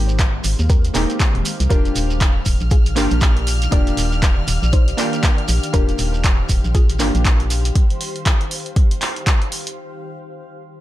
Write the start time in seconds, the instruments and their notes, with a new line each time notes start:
Already playing: fm bass G#1, ambient pad D#3 G#3 C5 F5, synth stab A#3 C4 D#4 G4
0.09 shekere
0.19 kick, clap, closed hi-hat, shekere
0.44 fm bass G#1, open hi-hat, shekere
0.59 fm bass D#2, shekere
0.70 synth pluck G4 A#4, kick, closed hi-hat, shekere
0.85 closed hi-hat, shekere
0.94 fm bass D#1, synth stab A#3 C4 D#4 G4, synth pluck C4 G#4, clap, open hi-hat, shekere
1.10 closed hi-hat, shekere
1.20 kick, clap, closed hi-hat, shekere
1.35 fm bass D#1, closed hi-hat
1.45 open hi-hat, shekere
1.60 fm bass C2, closed hi-hat, shekere
1.69 fm bass D#1, ambient pad D#3, synth stab A#3 D4 F4 G4, synth pluck G4 A#4, violin section F6, kick, closed hi-hat, shekere
1.85 closed hi-hat, shekere
1.96 fm bass D#1, open hi-hat, shekere
2.09 ambient pad D5, shekere
2.21 kick, clap, closed hi-hat, shekere
2.40 ambient pad G4
2.45 fm bass D#1, kick, open hi-hat, shekere
2.60 fm bass A#1, shekere
2.71 synth pluck F4 G#4, kick, closed hi-hat, shekere
2.86 closed hi-hat, shekere
2.95 fm bass G1, synth stab A#3 D4 F4 G4, synth pluck G4 A#4, clap, open hi-hat, shekere
3.10 fm bass A#1, closed hi-hat, shekere
3.21 kick, clap, closed hi-hat, shekere
3.37 closed hi-hat
3.47 open hi-hat, shekere
3.62 closed hi-hat, shekere
3.71 fm bass D#1, synth stab A#3 D4 F4 G4, synth pluck A#4 D5, kick, closed hi-hat, shekere
3.87 closed hi-hat, shekere
3.97 fm bass D#1, open hi-hat, shekere
4.12 shekere
4.23 kick, clap, closed hi-hat, shekere
4.48 fm bass D#1, open hi-hat, shekere
4.63 fm bass A#1, shekere
4.73 synth pluck D#4 C5, kick, closed hi-hat, shekere
4.88 closed hi-hat, shekere
4.97 synth stab A#3 D4 F4 G4, synth pluck A#4 D5, clap, open hi-hat, shekere
5.13 closed hi-hat, shekere
5.23 kick, clap, closed hi-hat, shekere
5.38 closed hi-hat
5.48 fm bass A#1, ambient pad C5, open hi-hat, shekere
5.63 closed hi-hat, shekere
5.73 fm bass D#1, synth stab A#3 D4 F4 G4, synth pluck G4 A#4, kick, closed hi-hat, shekere
5.89 closed hi-hat, shekere
5.98 fm bass D#1, open hi-hat, shekere
6.14 shekere
6.24 kick, clap, closed hi-hat, shekere
6.49 fm bass D#1, kick, open hi-hat, shekere
6.64 fm bass A#1, shekere
6.75 synth pluck F4 G#4, kick, closed hi-hat, shekere
6.89 closed hi-hat, shekere
6.99 fm bass G1, synth stab A#3 D4 F4 G4, synth pluck G4 A#4, clap, open hi-hat, shekere
7.15 fm bass A#1, closed hi-hat, shekere
7.25 kick, clap, closed hi-hat, shekere
7.40 closed hi-hat
7.50 open hi-hat, shekere
7.65 closed hi-hat, shekere
7.75 kick, closed hi-hat
7.90 closed hi-hat
8.01 open hi-hat
8.16 closed hi-hat
8.26 kick, clap, closed hi-hat
8.41 closed hi-hat
8.51 open hi-hat
8.66 closed hi-hat
8.76 kick, closed hi-hat
8.91 closed hi-hat
9.01 clap, open hi-hat
9.16 closed hi-hat
9.27 kick, clap, closed hi-hat
9.42 closed hi-hat
9.52 open hi-hat
9.67 closed hi-hat